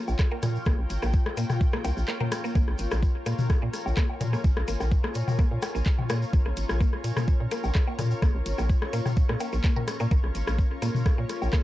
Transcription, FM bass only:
0.08 0.15 A#1 loud
0.43 0.58 A#2 loud
0.66 0.74 A#1 medium
0.79 0.86 A#1 loud
0.90 0.98 G#1 medium
1.02 1.17 A#1 loud
1.37 1.45 A#2 medium
1.84 1.92 C2 loud
1.97 2.04 A#1 loud
2.55 2.63 A#1 medium
2.68 2.75 A#1 loud
2.79 2.87 G#1 medium
2.91 3.06 A#1 loud
3.26 3.34 A#2 medium
3.62 3.69 A#2 medium
3.86 3.93 A#1 loud
4.21 4.36 A#2 loud
4.44 4.52 A#1 loud
4.57 4.64 A#1 loud
4.68 4.76 G#1 medium
4.80 4.95 A#1 loud
5.15 5.23 A#2 medium
5.51 5.58 A#2 medium
5.75 5.82 A#1 loud
6.10 6.25 A#2 loud
6.33 6.41 A#1 loud
6.46 6.53 A#1 loud
6.57 6.65 G#1 medium
6.69 6.84 A#1 loud
7.04 7.12 A#2 medium
7.40 7.47 A#2 medium
7.64 7.71 A#1 loud
7.99 8.14 A#2 loud
8.22 8.30 A#1 loud
8.35 8.42 A#1 loud
8.46 8.54 G#1 medium
8.58 8.73 A#1 loud
8.93 9.01 A#2 medium
9.29 9.36 A#2 medium
9.53 9.60 A#1 loud
10.00 10.07 A#2 loud
10.11 10.19 A#1 medium
10.24 10.31 A#1 loud
10.35 10.43 G#1 medium
10.47 10.62 A#1 medium
10.82 10.90 A#2 medium
11.18 11.25 A#2 medium
11.42 11.49 A#1 loud

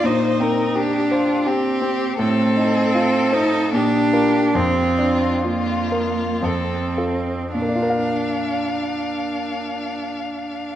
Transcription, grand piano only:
0.04 2.14 A#2 medium
0.40 0.97 C4 soft
0.75 1.32 G4 soft
1.11 1.68 C5 soft
1.46 2.04 G4 medium
1.82 2.19 C4 soft
2.19 3.69 A2 medium
2.57 3.18 D#4 soft
2.95 3.57 F4 medium
3.33 3.73 C5 soft
3.73 4.53 A#2 medium
4.13 4.51 F4 soft
4.13 4.51 A#4 soft
4.55 6.39 F2 medium
4.98 5.73 D4 soft
5.44 6.22 F4 soft
5.92 6.43 A#4 soft
6.43 7.51 F2 soft
6.97 7.50 F4 soft
6.97 7.50 A4 soft
7.54 10.75 A#2 soft
7.62 10.75 A#3 soft
7.69 10.75 D4 soft
7.75 10.75 F4 soft
7.82 10.75 A#4 soft
7.90 10.75 F5 soft

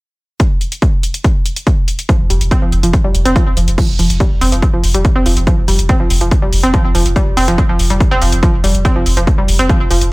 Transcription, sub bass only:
2.20 2.29 F1 medium
2.30 2.40 F1 loud
2.41 2.51 F1 medium
2.62 2.72 F1 medium
2.72 2.83 F1 loud
2.83 2.93 F1 medium
3.04 3.14 F1 medium
3.15 3.25 F1 loud
3.25 3.35 F1 medium
3.47 3.56 F1 medium
3.57 3.67 F1 loud
3.68 3.78 F1 medium
3.89 3.98 F1 medium
3.99 4.09 F1 loud
4.10 4.20 F1 medium
4.31 4.41 F1 medium
4.41 4.52 F1 loud
4.52 4.62 F1 medium
4.73 4.83 F1 medium
4.84 4.94 F1 loud
4.94 5.04 F1 medium
5.16 5.25 F1 medium
5.26 5.36 F1 loud
5.37 5.47 F1 medium
5.58 5.67 F1 medium
5.68 5.78 F1 loud
5.79 5.89 F1 medium
6.00 6.10 F1 medium
6.10 6.21 F1 loud
6.21 6.31 F1 medium
6.42 6.52 F1 medium
6.53 6.63 F1 loud
6.63 6.73 F1 medium
6.85 6.94 F1 medium
6.95 7.05 F1 loud
7.06 7.16 F1 medium
7.27 7.36 F1 medium
7.37 7.47 F1 loud
7.48 7.58 F1 medium
7.69 7.79 F1 medium
7.79 7.90 F1 loud
7.90 8.00 F1 medium
8.11 8.21 F1 medium
8.22 8.32 F1 loud
8.32 8.43 F1 medium
8.54 8.63 F1 medium
8.64 8.74 F1 loud
8.75 8.85 F1 medium
8.96 9.05 F1 medium
9.06 9.16 F1 loud
9.17 9.27 F1 medium
9.38 9.48 F1 medium
9.48 9.59 F1 loud
9.59 9.69 F1 medium
9.80 9.90 F1 medium
9.91 10.01 F1 loud
10.02 10.12 F1 medium

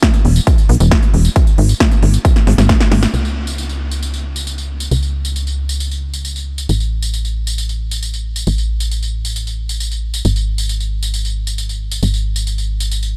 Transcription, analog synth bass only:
0.25 0.40 E1 medium
0.69 0.77 B1 loud
0.80 0.96 E1 loud
1.14 1.29 E1 medium
1.58 1.74 G#1 loud
2.03 2.18 G#1 medium
2.47 2.55 G#1 loud
2.58 2.74 G#1 medium
2.92 3.07 G#1 medium
3.14 4.89 C#2 medium
4.91 6.67 C#2 medium
6.69 8.45 A1 medium
8.47 10.23 A1 medium
10.25 12.00 G#1 medium
12.03 13.17 G#1 medium

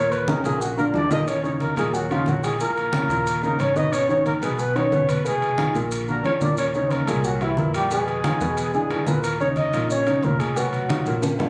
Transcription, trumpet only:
0.00 0.13 C#5 loud
0.12 0.30 B4 medium
0.28 0.44 A#4 medium
0.44 0.63 G#4 medium
0.61 0.77 F#4 medium
0.78 0.85 A#4 medium
0.95 1.10 D5 medium
1.11 1.29 D#5 loud
1.28 1.44 C#5 medium
1.44 1.52 C#5 medium
1.62 1.77 A#4 medium
1.77 1.95 G#4 medium
1.94 2.13 F#4 medium
2.11 2.30 F4 medium
2.29 2.46 F#4 medium
2.44 2.60 G#4 medium
2.61 3.39 A#4 medium
3.44 3.62 A#4 medium
3.60 3.78 C#5 medium
3.77 3.94 D#5 loud
3.92 4.09 C#5 loud
4.10 4.25 C#5 medium
4.26 4.33 A#4 medium
4.43 4.61 G#4 medium
4.59 4.78 B4 medium
4.76 5.11 C#5 loud
5.10 5.25 B4 medium
5.26 5.78 G#4 loud
6.09 6.24 A#4 medium
6.26 6.33 C#5 medium
6.41 6.57 D5 medium
6.58 6.66 C#5 medium
6.75 6.92 C#5 medium
6.91 7.09 A#4 medium
7.08 7.26 G#4 medium
7.25 7.43 F#4 medium
7.42 7.74 E4 medium
7.75 7.90 G4 medium
7.92 8.70 G#4 medium
8.74 9.08 G#4 medium
9.07 9.22 B4 medium
9.23 9.39 A#4 medium
9.40 9.48 C#5 medium
9.57 9.88 D#5 medium
9.91 10.25 C#5 medium
10.24 10.41 A#4 medium
10.40 10.58 G#4 medium
10.57 11.23 F#4 medium

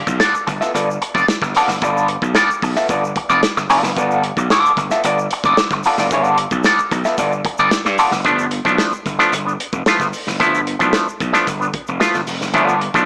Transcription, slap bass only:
0.07 0.19 B1 loud
0.34 muted slap bass stroke soft
0.47 0.59 G1 medium
0.74 0.97 G1 medium
1.15 1.26 F1 medium
1.28 muted slap bass stroke soft
1.42 1.53 G1 medium
1.67 1.79 F#1 medium
1.82 2.16 G1 loud
2.22 2.33 B1 loud
2.49 muted slap bass stroke medium
2.62 2.74 B1 loud
2.89 3.12 G1 loud
3.30 3.41 F1 loud
3.57 3.68 G1 medium
3.70 3.81 F1 medium
3.83 3.94 F#1 loud
3.97 4.30 G1 loud
4.37 4.48 B1 loud
4.64 muted slap bass stroke soft
4.77 4.88 G1 medium
5.04 5.26 G1 loud
5.44 5.55 F1 loud
5.58 muted slap bass stroke medium
5.71 5.82 G1 medium
5.98 6.09 F#1 medium
6.11 6.45 G1 medium
6.51 6.63 B1 loud
6.78 muted slap bass stroke medium
6.91 7.03 B1 medium
7.18 7.41 G1 medium
7.59 7.70 G1 medium
7.85 7.96 G2 medium
8.12 8.23 F#1 medium
8.25 8.59 G1 loud
8.65 8.77 B1 loud
8.93 muted slap bass stroke medium
9.06 9.17 G1 medium
9.32 9.55 G1 medium
9.73 9.84 F1 medium
9.87 muted slap bass stroke medium
10.00 10.11 G1 medium
10.27 10.38 F#1 loud
10.40 10.74 G1 loud
10.80 10.92 B1 loud
11.08 muted slap bass stroke soft
11.21 11.32 B1 medium
11.47 11.70 G1 loud
11.88 11.99 F1 loud
12.15 12.26 G1 medium
12.28 12.39 F1 medium
12.42 12.52 F#1 loud
12.54 12.88 G1 loud
12.94 13.05 B1 loud

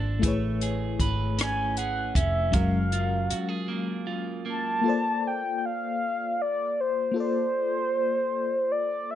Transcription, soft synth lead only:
1.41 1.75 G#5 loud
1.78 2.13 F#5 medium
2.16 2.55 E5 medium
2.54 4.08 F5 medium
4.49 5.29 A5 loud
5.27 5.58 G5 medium
5.58 5.67 G5 medium
5.65 6.43 F5 medium
6.42 6.82 D5 medium
6.80 7.17 C5 medium
7.18 8.73 C5 loud
8.72 9.12 D5 medium
9.11 9.15 E5 loud

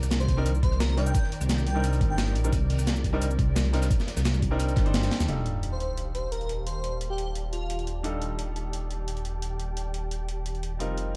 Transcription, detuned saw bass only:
0.03 0.44 C2 medium
0.46 1.13 C2 medium
1.41 2.02 C2 medium
2.01 2.37 G1 medium
2.35 2.51 A#1 medium
2.53 2.77 C2 loud
2.79 3.20 C2 medium
3.22 3.89 C2 medium
4.17 4.78 C2 medium
4.77 5.10 G1 medium
5.20 5.28 D#2 medium
5.29 10.79 D#1 medium
10.80 11.16 F1 medium

